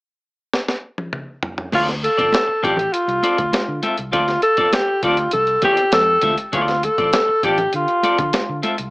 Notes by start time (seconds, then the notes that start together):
0.54 snare
0.68 snare
0.98 high tom
1.13 mid tom
1.43 floor tom
1.58 floor tom
1.72 D2 C4 F4 A4 D5, kick, crash, muted conga
1.88 muted clean electric guitar stroke, snare, closed hi-hat
2.03 A4, muted clean electric guitar stroke, closed hi-hat
2.17 G1 C4 F4 A4 D5, kick, closed hi-hat
2.32 snare, closed hi-hat, high conga
2.48 muted clean electric guitar stroke, muted fingered electric bass stroke
2.63 A1 C4 F4 G4 A4 D5, kick, closed hi-hat
2.77 muted clean electric guitar stroke, closed hi-hat, low conga
2.93 F4, closed hi-hat
3.08 C2, muted clean electric guitar stroke, closed hi-hat
3.23 C4 F4 A4 D5, closed hi-hat, muted conga
3.37 D2, muted clean electric guitar stroke, kick, closed hi-hat
3.52 muted clean electric guitar stroke, snare, closed hi-hat, high conga
3.68 D3
3.82 C4 F4 A4 E5, closed hi-hat, high conga
3.98 C2, muted clean electric guitar stroke, closed hi-hat
4.12 D2 C4 F4 A4 D5, kick, closed hi-hat, muted conga
4.27 muted clean electric guitar stroke, snare, closed hi-hat
4.42 A4, muted clean electric guitar stroke, closed hi-hat
4.57 C4 F4 A4 D5, muted fingered electric bass stroke, kick, closed hi-hat
4.73 G4, snare, closed hi-hat, high conga
4.88 muted clean electric guitar stroke
5.03 D2 C4 F4 A4 D5, kick, closed hi-hat
5.17 muted clean electric guitar stroke, closed hi-hat
5.31 C2 A4, closed hi-hat, low conga
5.47 muted clean electric guitar stroke, closed hi-hat
5.62 C4 F4 G4 A4 D5, kick, closed hi-hat, muted conga, low conga
5.77 muted clean electric guitar stroke, closed hi-hat
5.92 F2 A4, muted clean electric guitar stroke, snare, closed hi-hat, high conga
6.21 D2 C4 F4 A4 E5, kick, closed hi-hat, high conga
6.37 muted clean electric guitar stroke, closed hi-hat
6.52 D2 C4 F4 A4 D5, kick, closed hi-hat, muted conga
6.68 muted clean electric guitar stroke, snare, closed hi-hat
6.83 A4, muted clean electric guitar stroke, closed hi-hat, muted conga
6.98 A1 C4 F4 A4 D5, kick, closed hi-hat
7.13 snare, closed hi-hat, high conga
7.28 muted clean electric guitar stroke, muted fingered electric bass stroke
7.43 A1 C4 F4 G4 A4 D5, kick, closed hi-hat
7.58 muted clean electric guitar stroke, closed hi-hat, low conga
7.73 D3 F4, closed hi-hat
7.88 muted clean electric guitar stroke, closed hi-hat
8.03 C4 F4 A4 D5, muted fingered electric bass stroke, closed hi-hat, muted conga
8.18 D3, muted clean electric guitar stroke, kick, closed hi-hat
8.33 muted clean electric guitar stroke, snare, closed hi-hat, high conga
8.49 D3
8.62 C4 F4 A4 E5, closed hi-hat, high conga
8.77 C2, muted clean electric guitar stroke, closed hi-hat